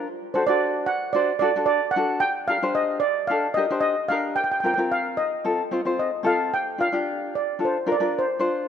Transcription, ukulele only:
0.34 D4 F#4 A4
0.48 D4 F#4 A4
1.14 D4 F#4 C5
1.40 D4 F#4 A4
1.56 D4 F#4 A4
1.96 D4 F#4 A4
2.49 D4 G4 A#4
2.62 D4 G4 C5
3.30 D4 G4 A4
3.57 D4 G4 A#4
3.70 D4 G4 C5
4.10 D4 G4 A#4
4.63 C4 F4 A#4
4.77 C4 F4 A#4
5.44 C4 F4 A4
5.71 C4 F4 C5
5.85 C4 F4 C5
6.23 C4 F4 A4
6.78 D4 F4 A#4
6.92 D4 F4 G4
7.59 D4 F4 A4
7.86 D4 F4 A#4
8.00 D4 F4 A#4
8.39 D4 F4 C5

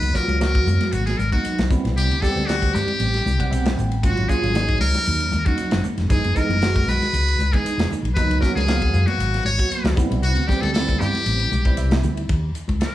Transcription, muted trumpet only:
Already playing: B4
0.16 A#4
0.41 A#4
0.93 F#4
1.06 G#4
1.18 A#4
1.32 F#4
1.97 G4
2.22 A4
2.47 F#4
2.74 G4
4.04 F#4
4.29 G#4
4.81 A#4
5.46 F#4
6.09 G#4
6.36 A#4
6.89 B4
7.53 G#4
8.15 B4
8.41 A#4
8.55 G#4
9.06 F#4
9.46 C#5
10.23 F#4
10.48 G4
10.61 A4
10.73 A4
10.99 G4
12.81 A#4

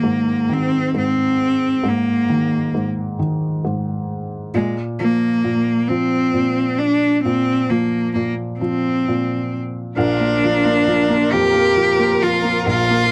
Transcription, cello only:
Already playing: A#3
0.53 C4
0.98 C4
1.89 A#3
4.55 G#3
4.99 A#3
5.89 C4
6.79 D4
7.23 C4
7.69 A#3
8.14 A#3
8.60 C4
9.97 D4
11.32 G4
12.23 F4
12.68 F4

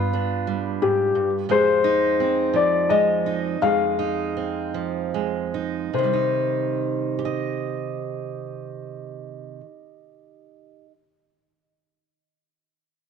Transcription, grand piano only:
Already playing: F4 B4
0.82 G4
1.51 G#4 C5
2.56 D5
2.89 D#5
3.62 G#4 F5
5.94 C5

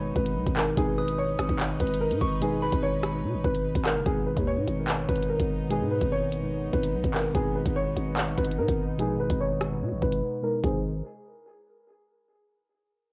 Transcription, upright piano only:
Already playing: C#5
0.16 B4
0.57 A#4
0.77 G#4
0.98 B4
1.18 C#5
1.80 B4
2.01 A#4
2.42 G#4
2.62 B4
2.83 C#5
3.44 B4
3.86 A#4
4.06 G#4
4.27 B4
4.47 C#5
5.09 B4
5.29 A#4
5.70 G#4
5.91 B4
6.12 C#5
6.73 B4
7.14 A#4
7.35 G#4
7.55 B4
7.76 C#5
8.38 B4
8.58 A#4
8.99 G#4
9.20 B4
9.40 C#5
10.02 B4
10.43 A#4
10.64 G#4

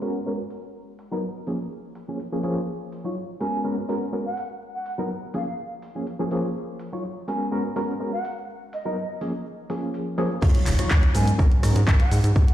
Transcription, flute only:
3.40 G#5
4.26 F#5
4.74 F#5
5.35 F5
5.47 F5
7.28 G#5
8.13 F#5
8.73 D#5
8.85 D#5
11.15 G#5
12.00 F#5
12.49 F#5

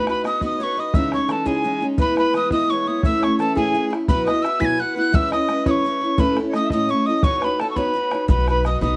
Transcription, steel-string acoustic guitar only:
0.07 D#4 F#4 B4
0.24 B3 D#4 F#4 B4
0.42 B3 D#4 F#4 B4
0.60 B3 D#4 F#4 B4
0.77 D#4 F#4 B4
0.94 C#3 E3 G#3 C#4 D#4
1.13 G#3 C#4 D#4
1.28 E3 G#3 C#4 D#4
1.45 C#3 E3 G#3 C#4 D#4
1.63 E3 G#3 C#4 D#4
1.80 G#3 C#4 D#4
1.98 E3 G#3 B3 E4
2.16 G#3 B3 E4
2.34 E3 G#3 B3 E4
2.52 E3 G#3 B3 E4
2.70 E3 G#3 B3 E4
2.87 G#3 B3 E4
3.05 A2 E3 A3 C#4 E4
3.23 A3 C#4 E4
3.39 E3 A3 C#4 E4
3.55 A2 E3 A3 C#4 E4
3.73 E3 A3 C#4 E4
3.90 A3 C#4 E4
4.08 B2 F#3 B3 E4 F#4 B4
4.26 B3 E4 F#4 B4
4.42 B3 E4 F#4 B4
4.60 B2 F#3 B3 E4 F#4 B4
4.78 B3 E4 F#4 B4
4.95 B3 E4 F#4 B4
5.12 E3 G#3 C#4 E4 B4
5.31 C#4 E4 B4
5.48 G#3 C#4 E4 B4
5.66 E3 G#3 C#4 E4 B4
5.85 G#3 C#4 E4 B4
6.01 C#4 E4 B4
6.18 A2 A3 C#4 E4 A4
6.37 C#4 E4 A4
6.54 A3 C#4 E4 A4
6.72 A2 A3 C#4 E4 A4
6.89 A3 C#4 E4 A4
7.07 C#4 E4 A4
7.24 B3 D#4 F#4 C#5
7.42 D#4 F#4 C#5
7.59 B3 D#4 F#4 C#5
7.76 B3 D#4 F#4 C#5
7.94 B3 D#4 F#4 C#5
8.11 D#4 F#4 C#5
8.28 B3 D#4 F#4 B4
8.47 D#4 F#4 B4
8.64 B3 D#4 F#4 B4
8.81 B3 D#4 F#4 B4

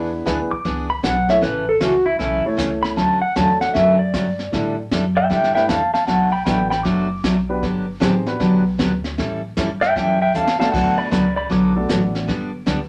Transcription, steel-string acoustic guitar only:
0.26 E3 B3 D4 G#4
0.65 E3 B3 D4 G#4
1.03 E3 B3 D4 G#4
1.41 C#3 E3 A3 C#4 A4
1.81 C#3 E3 A3 C#4 A4
2.19 C#3 E3 A3 C#4 A4
2.57 C#3 E3 A3 C#4 A4
2.96 D3 F#3 A3 C#4 F#4
3.36 D3 F#3 A3 C#4 F#4
3.74 D3 F#3 A3 C#4 F#4
4.14 D3 F#3 A3 C#4 F#4
4.53 D3 G3 D4 E4 A4
4.92 D3 G3 D4 E4 A4
5.30 D3 G3 D4 E4 A4
5.69 D3 G3 D4 E4 A4
6.07 B2 F#3 A3 D4 F#4
6.46 B2 F#3 A3 D4 F#4
6.84 B2 F#3 A3 D4 F#4
7.24 B2 F#3 A3 D4 F#4
7.63 D3 F#3 B3 D4 G4
8.00 D3 F#3 B3 D4 G4
8.40 D3 F#3 B3 D4 G4
8.78 D3 F#3 B3 D4 G4
9.18 E3 G3 C#4 E4 A4
9.57 E3 G3 C#4 E4 A4
9.95 E3 G3 C#4 E4 A4
10.34 E3 G3 C#4 E4 A4
10.73 D3 F#3 B3 F#4 A4
11.11 D3 F#3 B3 F#4 A4
11.50 D3 F#3 B3 F#4 A4
11.89 D3 F#3 B3 F#4 A4
12.27 D3 G3 B3 D4 G4
12.66 D3 G3 B3 D4 G4

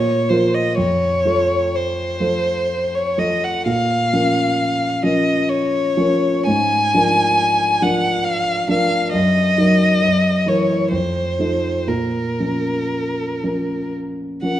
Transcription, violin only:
Already playing: C#5
0.29 C5
0.54 D#5
0.77 C#5
1.75 C5
2.95 C#5
3.19 D#5
3.44 F#5
3.68 F5
5.05 D#5
5.50 C#5
6.47 G#5
7.82 F#5
8.24 F5
8.70 F5
9.12 D#5
10.48 C#5
10.93 C5
11.88 A#4
14.43 F#5

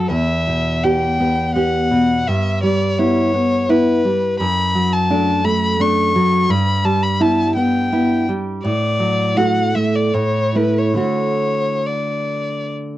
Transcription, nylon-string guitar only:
Already playing: F#3
0.10 E2
0.48 B2
0.84 B3 G4
1.20 B3
1.55 B3 G4
1.91 B2
2.28 G2
2.63 G3
2.99 B3 E4
3.34 B3
3.69 B3 E4
4.04 G3
4.40 F#2
4.75 F#3
5.10 A3 D4
5.44 A3
5.79 A3 D4
6.16 F#3
6.49 G2
6.85 G3
7.20 B3 E4
7.56 B3
7.92 B3 E4
8.29 G3
8.65 A2
8.99 F#3
9.37 A3 F#4
9.75 A3
10.14 A2
10.55 A3 E4
10.94 D3 A3 F#4

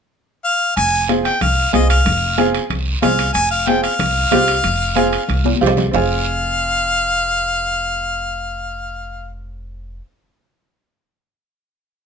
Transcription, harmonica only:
0.44 F5
0.77 G#5
1.24 G5
1.42 F5
1.74 D#5
1.90 F5
3.03 F5
3.33 G#5
3.51 F5
3.67 G5
3.83 F5
5.94 F5

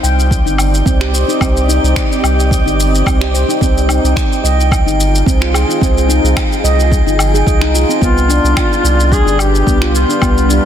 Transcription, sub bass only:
0.03 C2
0.46 G1
0.86 C2
1.41 C2
1.84 C2
2.24 C2
2.66 G1
3.06 C2
3.61 C2
4.04 C2
4.44 C2
4.86 G1
5.26 C2
5.82 C2
6.24 C2
6.64 C2
7.06 G1
7.47 C2
8.02 C2
8.44 C2
8.84 C2
9.26 G1
9.67 C2
10.22 C2

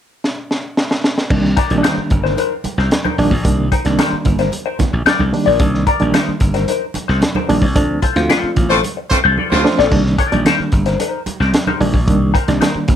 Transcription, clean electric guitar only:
1.57 D#4 A#4 D5
1.83 D#4 A#4 C5
2.11 muted clean electric guitar stroke
2.24 D#4 A#4 C5
2.37 D#4 A#4 C5
2.65 muted clean electric guitar stroke
2.78 D#4 A#4 C5
2.92 muted clean electric guitar stroke
3.04 D#4 A#4 C5
3.18 muted clean electric guitar stroke
3.31 muted clean electric guitar stroke
3.72 D#4 A#4 C5
3.99 D#4 A#4 C5
4.26 muted clean electric guitar stroke
4.39 D#4 A#4 C5
4.52 muted clean electric guitar stroke
4.66 D#4 A#4 C5
4.79 muted clean electric guitar stroke
4.93 muted clean electric guitar stroke
5.06 D#4 A#4 D5
5.33 muted clean electric guitar stroke
5.46 D#4 A#4 D5
5.87 D#4 A#4 D5
6.14 D#4 A#4 C5
6.42 muted clean electric guitar stroke
6.54 D#4 A#4 C5
6.68 D#4 A#4 C5
6.95 muted clean electric guitar stroke
7.08 D#4 A#4 C5
7.36 D#4 A#4 C5
7.49 muted clean electric guitar stroke
7.63 muted clean electric guitar stroke
8.02 F4 A4 C5
8.29 F4 A4 C5
8.57 muted clean electric guitar stroke
8.70 F4 A4 C5
8.84 muted clean electric guitar stroke
8.97 muted clean electric guitar stroke
9.24 F4 A4 C5
9.38 F4 A4 D5
9.65 muted clean electric guitar stroke
9.78 F4 A4 D5
10.18 D#4 A#4 D5
10.46 D#4 A#4 C5
10.73 muted clean electric guitar stroke
10.86 D#4 A#4 C5
11.00 D#4 A#4 C5
11.27 muted clean electric guitar stroke
11.40 D#4 A#4 C5
11.54 muted clean electric guitar stroke
11.67 D#4 A#4 C5
11.80 muted clean electric guitar stroke
11.94 muted clean electric guitar stroke
12.34 D#4 A#4 C5
12.61 D#4 A#4 C5
12.88 muted clean electric guitar stroke

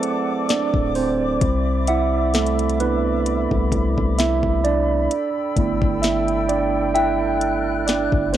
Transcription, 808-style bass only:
0.74 D1
1.42 C2
3.51 C2
3.72 C2
3.98 C2
4.43 C2
5.57 G1
5.82 G1
8.13 G1

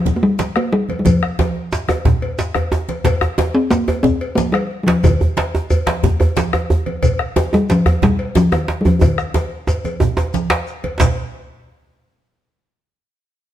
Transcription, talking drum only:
Already playing: F3
0.16 A#3
0.23 G3
0.56 A#3
0.73 G3
0.99 G3
1.05 F3
3.55 C4
3.70 A#3
4.03 C4
4.35 A#3
4.52 G3
4.83 F3 G3
5.04 D#3
7.54 G3
7.71 F3
8.03 G3
8.36 F3
8.53 D#3
8.81 G3
8.86 F3
9.02 D#3

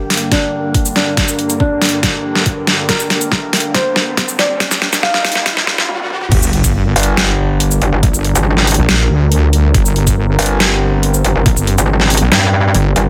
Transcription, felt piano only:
Already playing: G4
0.32 D4
0.96 D4
1.60 D4
2.89 A#4
3.75 C5
4.39 D5
5.03 F5

